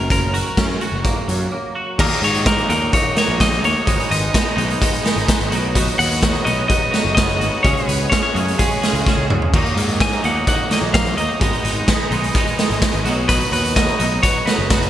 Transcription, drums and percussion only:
0.10 kick, closed hi-hat
0.34 closed hi-hat
0.57 kick, snare, closed hi-hat
0.81 closed hi-hat
1.04 kick, closed hi-hat
1.29 closed hi-hat
1.99 kick, crash
2.11 closed hi-hat
2.22 closed hi-hat
2.34 closed hi-hat
2.46 kick, snare, closed hi-hat
2.58 closed hi-hat
2.70 closed hi-hat
2.93 kick, closed hi-hat
3.16 snare, closed hi-hat
3.40 kick, snare, closed hi-hat
3.52 closed hi-hat
3.64 closed hi-hat
3.87 kick, closed hi-hat
4.00 closed hi-hat
4.11 closed hi-hat
4.34 kick, snare, closed hi-hat
4.58 closed hi-hat
4.70 closed hi-hat
4.82 kick, closed hi-hat
4.94 closed hi-hat
5.05 snare, closed hi-hat
5.17 closed hi-hat
5.28 kick, snare, closed hi-hat
5.40 closed hi-hat
5.52 closed hi-hat
5.75 kick, closed hi-hat
5.88 closed hi-hat
5.99 closed hi-hat
6.11 closed hi-hat
6.23 kick, snare, closed hi-hat
6.35 closed hi-hat
6.46 closed hi-hat
6.70 kick, closed hi-hat
6.94 snare, closed hi-hat
7.17 kick, snare, closed hi-hat
7.29 closed hi-hat
7.41 closed hi-hat
7.65 kick, closed hi-hat
7.77 closed hi-hat
7.89 closed hi-hat
8.12 kick, snare, closed hi-hat
8.36 closed hi-hat
8.48 closed hi-hat
8.59 kick, closed hi-hat
8.71 closed hi-hat
8.83 snare, closed hi-hat
8.95 closed hi-hat
9.06 kick, snare
9.30 mid tom
9.42 floor tom
9.54 kick, crash
9.66 closed hi-hat
9.77 closed hi-hat
9.89 closed hi-hat
10.00 kick, snare, closed hi-hat
10.12 closed hi-hat
10.24 closed hi-hat
10.47 kick, closed hi-hat
10.71 snare, closed hi-hat
10.94 kick, snare, closed hi-hat
11.06 closed hi-hat
11.18 closed hi-hat
11.41 kick, closed hi-hat
11.53 closed hi-hat
11.65 closed hi-hat
11.88 kick, snare, closed hi-hat
12.12 closed hi-hat
12.24 closed hi-hat
12.35 kick, closed hi-hat
12.47 closed hi-hat
12.59 snare, closed hi-hat
12.71 closed hi-hat
12.82 kick, snare, closed hi-hat
12.94 closed hi-hat
13.05 closed hi-hat
13.29 kick, closed hi-hat
13.41 closed hi-hat
13.53 closed hi-hat
13.64 closed hi-hat
13.76 kick, snare, closed hi-hat
13.88 closed hi-hat
14.00 closed hi-hat
14.23 kick, closed hi-hat
14.47 snare, closed hi-hat
14.70 kick, snare, closed hi-hat
14.82 closed hi-hat

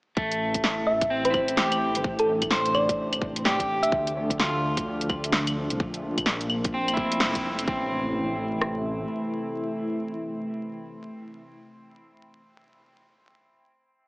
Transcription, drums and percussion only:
0.17 kick
0.32 closed hi-hat
0.54 kick, closed hi-hat
0.64 snare
1.01 kick, closed hi-hat
1.25 closed hi-hat
1.34 kick, claves
1.48 closed hi-hat
1.57 snare
1.72 closed hi-hat, claves
1.95 closed hi-hat
2.04 kick
2.19 closed hi-hat
2.42 kick, closed hi-hat, claves
2.51 snare
2.66 closed hi-hat
2.75 claves
2.89 kick, closed hi-hat
3.13 closed hi-hat, claves
3.22 kick
3.36 closed hi-hat
3.45 snare
3.60 kick, closed hi-hat
3.83 closed hi-hat
3.92 kick
4.07 closed hi-hat
4.30 kick, closed hi-hat
4.40 snare
4.77 kick, closed hi-hat
5.01 closed hi-hat
5.09 kick, claves
5.24 closed hi-hat
5.32 snare
5.47 closed hi-hat, claves
5.70 closed hi-hat
5.80 kick
5.94 closed hi-hat
6.18 kick, closed hi-hat, claves
6.26 snare
6.41 closed hi-hat
6.50 claves
6.65 kick, closed hi-hat
6.88 closed hi-hat, claves
6.97 kick
7.12 closed hi-hat
7.20 snare
7.35 kick, closed hi-hat
7.59 closed hi-hat
7.68 kick
8.62 cross-stick

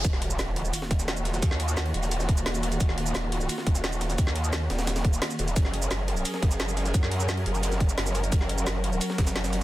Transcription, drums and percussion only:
0.05 kick, closed hi-hat, ride, shaker
0.13 snare
0.22 closed hi-hat, ride
0.30 shaker
0.39 snare, closed hi-hat, ride, shaker
0.56 closed hi-hat, ride
0.65 shaker
0.74 closed hi-hat, open hi-hat, shaker
0.82 snare
0.91 kick, closed hi-hat, ride
0.99 snare, shaker
1.08 snare, closed hi-hat, ride
1.17 shaker
1.25 snare, closed hi-hat, ride, shaker
1.34 snare, closed hi-hat, shaker
1.42 kick, closed hi-hat, ride, shaker
1.51 snare
1.60 closed hi-hat, ride
1.68 shaker
1.77 snare, closed hi-hat, ride, shaker
1.86 ride
1.94 closed hi-hat
2.03 ride, shaker
2.11 closed hi-hat, ride, shaker
2.20 snare, shaker
2.29 kick, closed hi-hat, ride
2.37 shaker
2.46 snare, closed hi-hat, ride
2.55 snare, shaker
2.63 closed hi-hat, ride, shaker
2.72 closed hi-hat, shaker
2.80 kick, closed hi-hat, ride, shaker
2.89 snare
2.98 closed hi-hat, ride
3.06 shaker
3.15 snare, closed hi-hat, ride, shaker
3.32 closed hi-hat, ride
3.41 shaker
3.49 closed hi-hat, open hi-hat, shaker
3.58 snare
3.67 kick, closed hi-hat, ride
3.75 snare, shaker
3.84 snare, closed hi-hat, ride
3.92 shaker
4.01 snare, closed hi-hat, ride, shaker
4.10 snare, closed hi-hat, shaker
4.18 kick, closed hi-hat, ride, shaker
4.27 snare
4.36 closed hi-hat, ride
4.44 shaker
4.53 snare, closed hi-hat, ride, shaker
4.70 snare, closed hi-hat, ride
4.79 snare, ride, shaker
4.87 snare, closed hi-hat, ride, shaker
4.96 snare, ride, shaker
5.05 kick, closed hi-hat, ride
5.13 shaker
5.22 snare, closed hi-hat, ride
5.30 snare, shaker
5.39 closed hi-hat, ride, shaker
5.48 closed hi-hat, shaker
5.56 kick, closed hi-hat, ride, shaker
5.65 snare
5.74 closed hi-hat, ride
5.82 shaker
5.91 snare, closed hi-hat, ride, shaker
6.08 closed hi-hat, ride
6.17 shaker
6.25 closed hi-hat, open hi-hat, shaker
6.34 snare
6.42 kick, closed hi-hat, ride
6.51 snare, shaker
6.60 snare, closed hi-hat, ride
6.68 shaker
6.77 snare, closed hi-hat, ride, shaker
6.86 snare, closed hi-hat, shaker
6.94 kick, closed hi-hat, ride, shaker
7.03 snare
7.11 closed hi-hat, ride
7.20 shaker
7.29 snare, closed hi-hat, ride, shaker
7.37 ride
7.46 closed hi-hat
7.55 ride, shaker
7.63 closed hi-hat, ride, shaker
7.72 snare, shaker
7.80 kick, closed hi-hat, ride
7.89 shaker
7.98 snare, closed hi-hat, ride
8.06 snare, shaker
8.15 closed hi-hat, ride, shaker
8.24 closed hi-hat, shaker
8.32 kick, closed hi-hat, ride, shaker
8.41 snare
8.49 closed hi-hat, ride
8.58 shaker
8.67 snare, closed hi-hat, ride, shaker
8.84 closed hi-hat, ride
8.93 shaker
9.01 closed hi-hat, open hi-hat, shaker
9.10 snare
9.18 kick, snare, closed hi-hat, ride
9.27 snare, ride, shaker
9.36 snare, closed hi-hat, ride
9.44 snare, ride, shaker
9.53 snare, closed hi-hat, ride, shaker

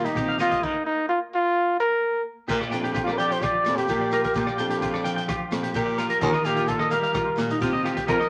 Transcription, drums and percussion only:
0.04 closed hi-hat, shekere
0.16 kick, closed hi-hat, shekere
0.39 cross-stick, closed hi-hat, shekere
0.52 kick, closed hi-hat
0.63 kick, crash
2.48 kick, crash, shekere
2.60 cross-stick, shekere
2.72 closed hi-hat, shekere
2.83 closed hi-hat, shekere
2.95 kick, closed hi-hat, shekere
3.08 cross-stick
3.18 closed hi-hat, shekere
3.30 closed hi-hat, shekere
3.42 kick, cross-stick, closed hi-hat, shekere
3.65 cross-stick, closed hi-hat, shekere
3.77 closed hi-hat, shekere
3.88 kick, closed hi-hat, shekere
4.12 cross-stick, closed hi-hat, shekere
4.24 kick, closed hi-hat
4.35 kick, closed hi-hat, shekere
4.47 cross-stick, shekere
4.58 closed hi-hat, shekere
4.70 closed hi-hat, shekere
4.82 kick, closed hi-hat, shekere
4.94 cross-stick
5.05 closed hi-hat, shekere
5.17 closed hi-hat, shekere
5.29 kick, cross-stick, closed hi-hat, shekere
5.52 cross-stick, closed hi-hat, shekere
5.64 closed hi-hat, shekere
5.74 kick, closed hi-hat, shekere
5.98 cross-stick, closed hi-hat, shekere
6.10 closed hi-hat
6.21 kick, closed hi-hat, shekere
6.33 cross-stick, shekere
6.45 closed hi-hat, shekere
6.57 closed hi-hat, shekere
6.68 kick, closed hi-hat, shekere
6.79 cross-stick
6.91 closed hi-hat, shekere
7.03 closed hi-hat, shekere
7.14 kick, cross-stick, closed hi-hat, shekere
7.38 cross-stick, closed hi-hat, shekere
7.49 closed hi-hat, shekere
7.61 kick, closed hi-hat, shekere
7.86 cross-stick, closed hi-hat
7.97 kick, closed hi-hat
8.08 kick, closed hi-hat, shekere
8.20 cross-stick, shekere

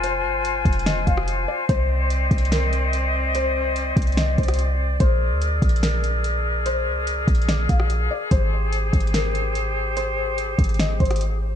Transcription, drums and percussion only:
0.04 closed hi-hat
0.45 closed hi-hat
0.65 kick, closed hi-hat
0.73 closed hi-hat
0.79 closed hi-hat
0.86 snare, closed hi-hat
1.07 kick, closed hi-hat
1.17 cross-stick
1.28 closed hi-hat
1.69 kick, closed hi-hat
2.10 closed hi-hat
2.31 kick, closed hi-hat
2.38 closed hi-hat
2.45 closed hi-hat
2.52 snare, closed hi-hat
2.73 closed hi-hat
2.93 closed hi-hat
3.35 closed hi-hat
3.76 closed hi-hat
3.97 kick, closed hi-hat, open hi-hat
4.02 closed hi-hat
4.07 closed hi-hat
4.12 closed hi-hat
4.17 snare, closed hi-hat
4.38 kick, closed hi-hat
4.43 closed hi-hat
4.48 cross-stick, closed hi-hat
4.54 closed hi-hat
4.59 closed hi-hat
5.00 kick, closed hi-hat
5.42 closed hi-hat
5.62 kick, closed hi-hat
5.69 closed hi-hat
5.76 closed hi-hat
5.83 snare, closed hi-hat
6.04 closed hi-hat
6.24 closed hi-hat
6.66 closed hi-hat
7.07 closed hi-hat
7.28 kick, closed hi-hat
7.35 closed hi-hat
7.42 closed hi-hat
7.49 snare, closed hi-hat
7.69 kick, closed hi-hat
7.80 cross-stick
7.90 closed hi-hat
8.31 kick, closed hi-hat
8.73 closed hi-hat
8.93 kick, closed hi-hat
9.00 closed hi-hat
9.07 closed hi-hat
9.14 snare, closed hi-hat
9.35 closed hi-hat
9.55 closed hi-hat
9.97 closed hi-hat
10.38 closed hi-hat
10.59 kick, closed hi-hat, open hi-hat
10.64 closed hi-hat
10.69 closed hi-hat
10.74 closed hi-hat
10.79 snare, closed hi-hat
11.00 kick, closed hi-hat
11.05 closed hi-hat
11.11 cross-stick, closed hi-hat
11.16 closed hi-hat
11.21 closed hi-hat

